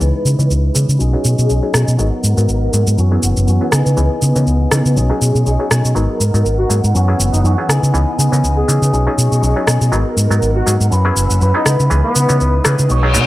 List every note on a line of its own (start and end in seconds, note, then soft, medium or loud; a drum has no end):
0.00 0.10 C#2 medium
0.00 0.36 E3 medium
0.00 0.98 G#3 medium
0.00 0.36 B3 medium
0.00 0.36 C#4 medium
0.00 0.99 D#4 medium
0.00 1.00 E4 medium
0.00 0.36 G#4 medium
0.00 0.98 B4 medium
0.00 1.01 B4 medium
0.00 0.36 D#5 medium
0.00 0.99 D#6 medium
0.00 shaker soft
0.25 0.35 C#3 medium
0.25 shaker medium
0.39 0.47 C#3 medium
0.39 0.72 E3 medium
0.39 0.72 B3 medium
0.39 0.73 C#4 medium
0.39 0.73 D#5 medium
0.39 0.73 A#5 medium
0.39 shaker soft
0.50 0.68 C#2 medium
0.50 shaker soft
0.75 0.85 C#3 medium
0.75 0.96 E3 medium
0.75 0.96 B3 medium
0.75 0.96 C#4 medium
0.75 0.96 D#4 medium
0.75 0.97 G#4 medium
0.75 shaker medium
0.89 0.96 C#3 medium
0.89 shaker soft
0.99 1.14 B1 medium
0.99 1.48 F#3 medium
0.99 1.48 C#4 medium
0.99 1.49 D#4 medium
0.99 1.98 G#4 medium
0.99 1.50 G#4 medium
0.99 1.98 D#5 medium
0.99 1.98 C#6 medium
0.99 shaker soft
1.13 1.60 F#3 medium
1.13 1.60 B3 medium
1.13 1.60 C#4 medium
1.13 1.60 D#4 medium
1.13 1.60 G#4 medium
1.13 muted fingered electric bass stroke soft
1.25 1.34 B2 medium
1.25 shaker medium
1.39 1.46 B2 medium
1.39 shaker soft
1.49 1.59 B1 medium
1.49 1.96 F#3 medium
1.49 1.98 C#4 medium
1.49 1.99 D#4 medium
1.49 2.00 G#4 medium
1.49 shaker soft
1.63 1.75 F#3 medium
1.63 1.75 B3 medium
1.63 1.75 C#4 medium
1.63 1.75 D#4 medium
1.63 1.75 G#4 medium
1.74 1.84 B2 medium
1.74 cross-stick medium
1.74 shaker medium
1.88 1.96 B2 medium
1.88 shaker soft
1.97 2.09 G#1 medium
1.97 2.97 F#3 medium
1.97 2.34 F#3 medium
1.97 2.98 B3 medium
1.97 2.34 B3 medium
1.97 2.34 D#4 medium
1.97 2.99 D#4 medium
1.97 2.34 G#4 loud
1.97 2.34 A#4 medium
1.97 2.97 A#4 medium
1.97 2.99 A#4 medium
1.97 2.97 F#5 medium
1.97 shaker soft
2.23 2.33 G#2 medium
2.23 shaker medium
2.37 2.45 G#2 medium
2.37 2.71 F#3 medium
2.37 2.71 B3 medium
2.37 2.71 D#4 medium
2.37 2.71 A#4 medium
2.37 shaker soft
2.48 2.67 G#1 medium
2.48 shaker soft
2.73 2.83 G#2 medium
2.73 2.95 F#3 medium
2.73 2.95 A#3 medium
2.73 2.95 B3 medium
2.73 2.95 D#4 medium
2.73 2.95 G#4 medium
2.73 shaker medium
2.87 2.95 G#2 medium
2.87 shaker soft
2.97 3.16 F#2 medium
2.97 3.46 E3 medium
2.97 4.95 B3 medium
2.97 3.47 B3 medium
2.97 3.48 C#4 medium
2.97 3.48 F#4 medium
2.97 3.72 F#5 medium
2.97 3.72 E6 medium
2.97 shaker soft
3.12 3.58 F#3 medium
3.12 3.58 B3 medium
3.12 3.58 C#4 medium
3.12 3.58 E4 medium
3.12 3.58 G#4 medium
3.23 3.33 F#1 medium
3.23 shaker medium
3.37 3.45 F#1 medium
3.37 shaker soft
3.47 3.57 F#2 medium
3.47 3.72 E3 medium
3.47 3.73 B3 medium
3.47 3.72 C#4 medium
3.47 3.71 F#4 medium
3.47 shaker soft
3.61 3.71 F#3 medium
3.61 3.71 B3 medium
3.61 3.71 C#4 medium
3.61 3.71 E4 medium
3.61 3.71 G#4 medium
3.71 3.82 C#3 medium
3.71 4.95 E3 medium
3.71 4.96 B3 medium
3.71 4.96 D#4 medium
3.71 4.96 G#4 medium
3.71 4.95 D#6 medium
3.71 cross-stick medium
3.71 shaker medium
3.86 3.94 C#3 medium
3.86 shaker soft
3.97 4.07 C#2 medium
3.97 4.32 E3 medium
3.97 4.33 B3 medium
3.97 4.33 C#4 medium
3.97 4.33 D#4 medium
3.97 4.33 G#4 medium
3.97 shaker soft
4.22 4.32 C#3 medium
4.22 shaker medium
4.36 4.44 C#3 medium
4.36 4.69 E3 medium
4.36 4.69 B3 medium
4.36 4.69 C#4 medium
4.36 4.69 D#4 medium
4.36 4.69 A#4 medium
4.36 shaker soft
4.47 4.65 C#2 medium
4.47 shaker soft
4.71 4.81 C#3 medium
4.71 4.93 E3 medium
4.71 4.93 B3 medium
4.71 4.93 C#4 medium
4.71 4.93 D#4 medium
4.71 4.93 G#4 medium
4.71 cross-stick medium
4.71 shaker medium
4.85 4.98 C#3 medium
4.85 shaker soft
4.96 5.10 B1 medium
4.96 5.45 F#3 medium
4.96 5.45 C#4 medium
4.96 5.46 D#4 medium
4.96 5.95 G#4 medium
4.96 5.46 G#4 medium
4.96 5.95 D#5 medium
4.96 5.95 C#6 medium
4.96 shaker soft
5.10 5.56 F#3 medium
5.10 5.56 B3 medium
5.10 5.57 C#4 medium
5.10 5.57 D#4 medium
5.10 5.57 G#4 medium
5.10 muted fingered electric bass stroke soft
5.21 5.31 B2 medium
5.21 shaker medium
5.35 5.43 B2 medium
5.35 shaker soft
5.45 5.56 B1 medium
5.45 5.94 F#3 medium
5.45 5.95 C#4 medium
5.45 5.95 D#4 medium
5.45 5.96 G#4 medium
5.45 shaker soft
5.59 5.71 F#3 medium
5.59 5.72 B3 medium
5.59 5.72 C#4 medium
5.59 5.72 D#4 medium
5.59 5.72 G#4 medium
5.71 5.81 B2 medium
5.71 cross-stick medium
5.71 shaker medium
5.85 5.92 B2 medium
5.85 shaker soft
5.95 6.05 G#1 medium
5.95 6.20 F#3 medium
5.95 6.31 F#3 medium
5.95 6.31 B3 medium
5.95 6.20 B3 medium
5.95 6.31 D#4 medium
5.95 6.20 D#4 medium
5.95 6.31 G#4 loud
5.95 6.31 A#4 medium
5.95 6.94 A#4 medium
5.95 6.18 A#4 medium
5.95 7.68 F#5 medium
5.95 shaker soft
6.19 6.30 G#2 medium
6.19 6.94 B3 soft
6.19 6.95 D#4 soft
6.19 6.94 A#4 medium
6.19 shaker medium
6.34 6.42 G#2 medium
6.34 6.67 F#3 medium
6.34 6.67 B3 medium
6.34 6.68 D#4 medium
6.34 6.68 A#4 medium
6.34 shaker soft
6.45 6.63 G#1 medium
6.45 shaker soft
6.59 6.76 F#4 medium
6.69 6.80 G#2 medium
6.69 6.91 F#3 medium
6.69 6.91 A#3 medium
6.69 6.91 B3 medium
6.69 6.91 D#4 medium
6.69 6.92 G#4 medium
6.69 shaker medium
6.84 6.92 G#2 medium
6.84 shaker soft
6.94 7.13 F#2 medium
6.94 7.42 E3 medium
6.94 7.44 B3 medium
6.94 8.91 B3 medium
6.94 7.45 C#4 medium
6.94 7.45 F#4 medium
6.94 7.69 E6 medium
6.94 shaker soft
7.08 7.55 F#3 medium
7.08 7.55 B3 medium
7.08 7.55 C#4 medium
7.08 7.55 E4 medium
7.08 7.55 G#4 medium
7.19 7.29 F#1 medium
7.19 shaker medium
7.33 7.41 F#1 medium
7.33 7.40 D#4 medium
7.33 shaker soft
7.44 7.54 F#2 medium
7.44 7.69 E3 medium
7.44 7.69 B3 medium
7.44 7.69 C#4 medium
7.44 7.53 D#4 medium
7.44 7.68 F#4 medium
7.44 shaker soft
7.58 7.68 F#3 medium
7.58 7.68 B3 medium
7.58 7.68 C#4 medium
7.58 7.68 E4 medium
7.58 7.68 G#4 medium
7.69 7.79 C#3 medium
7.69 8.19 E3 medium
7.69 8.20 B3 medium
7.69 8.19 D#4 medium
7.69 8.18 G#4 medium
7.69 8.92 D#6 medium
7.69 cross-stick medium
7.69 shaker medium
7.83 7.91 C#3 medium
7.83 shaker soft
7.94 8.04 C#2 medium
7.94 8.29 E3 medium
7.94 8.29 B3 medium
7.94 8.29 C#4 medium
7.94 8.29 D#4 medium
7.94 8.29 G#4 medium
7.94 shaker soft
8.18 8.28 C#3 medium
8.18 8.93 B3 soft
8.18 8.93 D#4 soft
8.18 8.93 G#4 medium
8.18 shaker medium
8.32 8.40 C#3 medium
8.32 8.66 E3 medium
8.32 8.66 B3 medium
8.32 8.66 C#4 medium
8.32 8.66 D#4 medium
8.32 8.66 A#4 medium
8.32 shaker soft
8.44 8.62 C#2 medium
8.44 shaker soft
8.57 8.98 G#4 medium
8.68 8.78 C#3 medium
8.68 8.90 E3 medium
8.68 8.90 B3 medium
8.68 8.90 C#4 medium
8.68 8.90 D#4 medium
8.68 8.90 G#4 medium
8.68 shaker medium
8.82 8.90 C#3 medium
8.82 shaker soft
8.93 9.06 B1 medium
8.93 9.41 F#3 medium
8.93 9.42 C#4 medium
8.93 9.42 D#4 medium
8.93 9.92 G#4 medium
8.93 9.43 G#4 medium
8.93 9.92 D#5 medium
8.93 9.92 C#6 medium
8.93 shaker soft
9.07 9.53 F#3 medium
9.07 9.53 B3 medium
9.07 9.53 C#4 medium
9.07 9.53 D#4 medium
9.07 9.54 G#4 medium
9.07 muted fingered electric bass stroke soft
9.18 9.28 B2 medium
9.18 shaker medium
9.32 9.40 B2 medium
9.32 shaker soft
9.42 9.52 B1 medium
9.42 9.90 F#3 medium
9.42 9.92 C#4 medium
9.42 9.93 D#4 medium
9.42 9.93 G#4 medium
9.42 shaker soft
9.56 9.68 F#3 medium
9.56 9.68 B3 medium
9.56 9.68 C#4 medium
9.56 9.68 D#4 medium
9.56 9.69 G#4 medium
9.67 9.77 B2 medium
9.67 cross-stick medium
9.67 shaker medium
9.81 9.89 B2 medium
9.81 shaker soft
9.91 10.02 G#1 medium
9.91 10.91 F#3 medium
9.91 10.27 F#3 medium
9.91 10.28 B3 medium
9.91 10.90 B3 medium
9.91 10.28 D#4 medium
9.91 10.92 D#4 medium
9.91 10.28 G#4 loud
9.91 10.28 A#4 medium
9.91 10.91 A#4 medium
9.91 10.93 A#4 medium
9.91 11.64 F#5 medium
9.91 shaker soft
10.17 10.27 G#2 medium
10.17 shaker medium
10.30 10.38 G#2 medium
10.30 10.64 F#3 medium
10.30 10.64 B3 medium
10.30 10.64 D#4 medium
10.30 10.64 A#4 medium
10.30 shaker soft
10.42 10.60 G#1 medium
10.42 shaker soft
10.56 10.73 F#4 medium
10.67 10.76 G#2 medium
10.67 10.88 F#3 medium
10.67 10.88 A#3 medium
10.67 10.88 B3 medium
10.67 10.88 D#4 medium
10.67 10.88 G#4 medium
10.67 shaker medium
10.80 10.88 G#2 medium
10.80 shaker soft
10.91 11.10 F#2 medium
10.91 11.40 C#4 medium
10.91 11.41 E4 medium
10.91 12.88 B4 medium
10.91 11.42 B4 medium
10.91 11.65 E6 medium
10.91 shaker soft
11.05 11.51 F#3 medium
11.05 11.52 B3 medium
11.05 11.52 C#4 medium
11.05 11.52 E4 medium
11.05 11.52 G#4 medium
11.16 11.26 F#1 medium
11.16 shaker medium
11.30 11.38 F#1 medium
11.30 shaker soft
11.40 11.51 F#2 medium
11.40 11.66 C#4 medium
11.40 11.65 E4 medium
11.40 11.64 B4 medium
11.40 shaker soft
11.54 11.64 F#3 medium
11.54 11.64 B3 medium
11.54 11.64 C#4 medium
11.54 11.72 D#4 medium
11.54 11.65 E4 medium
11.54 11.65 G#4 medium
11.66 11.76 C#3 medium
11.66 12.89 G#3 medium
11.66 12.17 D#4 medium
11.66 12.15 E4 medium
11.66 12.14 B4 medium
11.66 13.27 D#6 medium
11.66 cross-stick medium
11.66 shaker medium
11.80 11.87 C#3 medium
11.80 shaker soft
11.90 12.00 C#2 medium
11.90 12.26 E3 medium
11.90 12.26 B3 medium
11.90 12.26 C#4 medium
11.90 12.26 G#4 loud
11.90 12.26 D#5 medium
11.90 shaker soft
12.05 12.54 B3 medium
12.15 12.25 C#3 medium
12.15 12.89 D#4 soft
12.15 12.90 E4 medium
12.15 12.91 B4 medium
12.15 shaker medium
12.29 12.37 C#3 loud
12.29 12.62 E3 medium
12.29 12.62 B3 medium
12.29 12.62 C#4 medium
12.29 12.62 D#5 medium
12.29 12.63 A#5 medium
12.29 shaker soft
12.40 12.59 C#2 medium
12.40 shaker soft
12.64 12.75 C#3 medium
12.64 12.86 E3 medium
12.64 12.86 B3 medium
12.64 12.86 C#4 medium
12.64 12.86 D#4 medium
12.64 12.86 G#4 medium
12.64 cross-stick medium
12.64 shaker medium
12.79 12.87 C#3 medium
12.79 shaker soft
12.89 13.16 B1 medium
12.89 13.27 G#3 medium
12.89 13.27 D#4 medium
12.89 13.27 F#4 medium
12.89 13.27 C#5 medium
12.89 13.27 G#5 medium
12.89 reverse cymbal medium
12.89 shaker soft
13.03 13.12 F#3 medium
13.03 13.12 B3 medium
13.03 13.12 C#4 medium
13.03 13.12 D#4 medium
13.03 13.13 G#4 loud
13.14 13.24 B2 medium
13.14 13.27 F#3 medium
13.14 13.27 B3 medium
13.14 13.27 C#4 medium
13.14 13.27 D#4 medium
13.14 13.27 G#4 medium
13.14 shaker medium